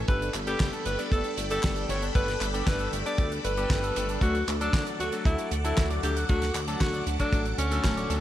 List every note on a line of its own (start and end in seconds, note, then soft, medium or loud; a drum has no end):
0.00 8.20 A4 medium
0.08 0.30 G1 loud
0.08 0.23 G3 medium
0.08 0.21 A3 loud
0.08 0.23 B3 medium
0.08 0.23 D4 medium
0.08 0.23 A4 medium
0.08 0.32 B4 loud
0.08 4.18 D5 medium
0.08 4.18 G5 medium
0.08 4.18 B5 medium
0.08 kick loud
0.08 closed hi-hat medium
0.21 0.33 D4 medium
0.21 closed hi-hat medium
0.34 0.56 G1 medium
0.34 0.41 A3 medium
0.34 clap medium
0.34 closed hi-hat loud
0.47 0.96 G3 medium
0.47 0.96 B3 medium
0.47 0.96 D4 medium
0.47 0.71 G4 medium
0.47 0.59 G4 loud
0.47 0.96 A4 loud
0.47 closed hi-hat soft
0.60 0.71 G1 medium
0.60 0.72 A3 loud
0.60 kick loud
0.60 snare loud
0.60 clap medium
0.60 closed hi-hat medium
0.73 0.85 A4 medium
0.73 closed hi-hat medium
0.86 0.97 G1 medium
0.86 0.98 A3 medium
0.86 1.01 B4 medium
0.86 closed hi-hat loud
0.99 1.35 G3 medium
0.99 1.35 B3 medium
0.99 1.34 D4 medium
0.99 1.10 D4 loud
0.99 1.35 A4 loud
0.99 closed hi-hat medium
1.12 1.23 G1 medium
1.12 1.24 A3 loud
1.12 1.35 A4 loud
1.12 kick loud
1.12 closed hi-hat medium
1.24 1.36 D4 medium
1.24 closed hi-hat soft
1.37 1.59 G1 medium
1.37 1.44 A3 medium
1.37 closed hi-hat loud
1.50 1.60 G3 medium
1.50 1.60 B3 medium
1.50 1.60 D4 medium
1.50 1.63 G4 loud
1.50 1.74 A4 loud
1.50 1.60 A4 medium
1.50 closed hi-hat medium
1.63 1.85 G1 medium
1.63 1.86 G3 medium
1.63 1.75 A3 loud
1.63 1.86 B3 medium
1.63 1.86 D4 medium
1.63 1.86 G4 medium
1.63 kick loud
1.63 snare loud
1.63 clap medium
1.63 closed hi-hat medium
1.76 1.88 A4 medium
1.76 closed hi-hat medium
1.89 2.11 G1 loud
1.89 2.12 G3 medium
1.89 2.02 A3 medium
1.89 2.12 B3 medium
1.89 2.12 D4 medium
1.89 2.12 A4 loud
1.89 2.05 C#5 medium
1.89 closed hi-hat medium
2.02 2.14 D4 loud
2.02 closed hi-hat medium
2.15 2.37 G1 medium
2.15 2.30 G3 medium
2.15 2.28 A3 loud
2.15 2.30 B3 medium
2.15 2.30 D4 medium
2.15 2.30 A4 medium
2.15 2.47 B4 loud
2.15 kick loud
2.15 closed hi-hat medium
2.28 2.40 D4 medium
2.28 snare soft
2.28 closed hi-hat medium
2.41 2.63 G1 medium
2.41 2.48 A3 medium
2.41 clap medium
2.41 closed hi-hat loud
2.54 3.03 G3 medium
2.54 3.03 B3 medium
2.54 3.03 D4 medium
2.54 2.66 G4 loud
2.54 3.03 A4 loud
2.54 closed hi-hat soft
2.67 2.88 G1 medium
2.67 2.78 A3 loud
2.67 2.91 B4 medium
2.67 kick loud
2.67 snare loud
2.67 clap medium
2.67 closed hi-hat medium
2.79 2.91 A4 medium
2.79 closed hi-hat medium
2.93 3.04 G1 medium
2.93 3.05 A3 medium
2.93 closed hi-hat loud
3.06 3.41 G3 medium
3.06 3.41 B3 medium
3.06 3.41 D4 medium
3.06 3.17 D4 loud
3.06 3.41 A4 loud
3.06 3.29 D5 loud
3.06 closed hi-hat medium
3.18 3.40 D2 medium
3.18 3.31 A3 loud
3.18 kick loud
3.18 closed hi-hat medium
3.32 3.43 D4 medium
3.32 closed hi-hat medium
3.44 3.66 G1 medium
3.44 3.52 A3 medium
3.44 4.12 B4 loud
3.44 closed hi-hat loud
3.57 3.67 G3 medium
3.57 3.67 B3 medium
3.57 3.67 D4 medium
3.57 3.70 G4 loud
3.57 3.67 A4 medium
3.57 closed hi-hat medium
3.70 3.92 G1 medium
3.70 3.93 G3 medium
3.70 3.82 A3 loud
3.70 3.93 B3 medium
3.70 3.93 D4 medium
3.70 3.93 G4 loud
3.70 kick loud
3.70 snare loud
3.70 clap medium
3.70 closed hi-hat medium
3.84 3.95 A4 medium
3.84 closed hi-hat medium
3.96 4.18 G1 loud
3.96 4.19 G3 medium
3.96 4.09 A3 medium
3.96 4.19 B3 medium
3.96 4.19 D4 medium
3.96 4.19 A4 loud
3.96 closed hi-hat loud
4.09 4.21 D4 loud
4.09 closed hi-hat medium
4.21 4.43 D2 loud
4.21 4.37 F#3 medium
4.21 4.37 A3 medium
4.21 4.35 A3 loud
4.21 4.37 D4 medium
4.21 4.46 F#4 loud
4.21 4.37 A4 medium
4.21 8.20 F#5 medium
4.21 8.20 D6 medium
4.21 kick loud
4.21 closed hi-hat medium
4.35 4.47 F#4 medium
4.35 closed hi-hat medium
4.48 4.69 D2 loud
4.48 4.55 A3 medium
4.48 clap medium
4.48 closed hi-hat medium
4.61 5.10 F#3 medium
4.61 5.10 A3 medium
4.61 4.84 D4 medium
4.61 5.10 D4 medium
4.61 4.73 A4 loud
4.61 5.10 A4 loud
4.61 closed hi-hat medium
4.73 4.84 D2 medium
4.73 4.85 A3 loud
4.73 kick loud
4.73 snare loud
4.73 clap medium
4.73 closed hi-hat medium
4.87 4.98 D5 medium
4.87 closed hi-hat medium
4.99 5.10 D2 medium
4.99 5.12 A3 medium
4.99 5.15 F#4 medium
4.99 closed hi-hat medium
5.12 5.48 F#3 medium
5.12 5.48 A3 medium
5.12 5.48 D4 medium
5.12 5.24 F#4 loud
5.12 5.48 A4 loud
5.12 closed hi-hat medium
5.25 5.36 D2 medium
5.25 5.38 A3 loud
5.25 5.49 E4 loud
5.25 kick loud
5.25 closed hi-hat medium
5.38 5.50 F#4 medium
5.38 closed hi-hat medium
5.51 5.73 D2 medium
5.51 5.58 A3 medium
5.51 closed hi-hat loud
5.64 5.74 F#3 medium
5.64 5.74 A3 medium
5.64 5.74 D4 medium
5.64 5.88 E4 medium
5.64 5.74 A4 medium
5.64 5.77 A4 loud
5.64 closed hi-hat medium
5.77 5.99 D2 medium
5.77 6.00 F#3 medium
5.77 5.89 A3 loud
5.77 6.00 A3 medium
5.77 6.00 D4 medium
5.77 6.00 F#4 medium
5.77 kick loud
5.77 snare loud
5.77 clap medium
5.77 closed hi-hat medium
5.90 6.02 D5 medium
5.90 closed hi-hat medium
6.03 6.25 D2 loud
6.03 6.26 F#3 medium
6.03 6.26 A3 medium
6.03 6.16 A3 medium
6.03 6.26 D4 medium
6.03 6.19 G4 medium
6.03 6.26 A4 loud
6.03 closed hi-hat loud
6.16 6.28 F#4 loud
6.16 closed hi-hat medium
6.29 6.51 D2 medium
6.29 6.43 F#3 medium
6.29 6.44 A3 medium
6.29 6.41 A3 loud
6.29 6.43 D4 medium
6.29 6.60 F#4 loud
6.29 6.44 A4 medium
6.29 kick loud
6.29 closed hi-hat medium
6.42 6.53 F#4 medium
6.42 snare soft
6.42 closed hi-hat medium
6.54 6.76 D2 loud
6.54 6.62 A3 medium
6.54 clap medium
6.54 closed hi-hat loud
6.68 7.16 F#3 medium
6.68 7.16 A3 medium
6.68 7.16 D4 medium
6.68 7.16 A4 loud
6.68 6.80 A4 loud
6.68 closed hi-hat medium
6.80 7.02 D2 medium
6.80 6.92 A3 loud
6.80 7.04 F#4 loud
6.80 kick loud
6.80 snare loud
6.80 clap medium
6.80 closed hi-hat medium
6.94 7.05 D5 medium
6.94 closed hi-hat medium
7.07 7.17 D2 medium
7.07 7.19 A3 medium
7.07 closed hi-hat medium
7.19 7.55 F#3 medium
7.19 7.55 A3 medium
7.19 7.55 D4 medium
7.19 7.43 D4 loud
7.19 7.31 F#4 loud
7.19 7.55 A4 loud
7.19 kick medium
7.19 closed hi-hat medium
7.32 7.54 A1 medium
7.32 7.45 A3 loud
7.32 kick loud
7.32 closed hi-hat medium
7.45 7.57 F#4 medium
7.45 closed hi-hat medium
7.58 7.80 D2 loud
7.58 7.65 A3 medium
7.58 8.20 C#4 loud
7.58 closed hi-hat loud
7.71 8.07 D3 medium
7.71 8.07 F#3 loud
7.71 8.07 A3 medium
7.71 7.83 A4 loud
7.71 8.07 A4 loud
7.71 closed hi-hat medium
7.84 8.06 D1 medium
7.84 7.96 A3 loud
7.84 kick loud
7.84 snare loud
7.84 clap loud
7.84 closed hi-hat medium
7.97 8.09 D5 medium
7.97 closed hi-hat medium
8.10 8.20 D2 medium
8.10 8.20 F#3 loud
8.10 8.20 A3 medium
8.10 8.20 D4 medium
8.10 8.20 A4 loud
8.10 closed hi-hat medium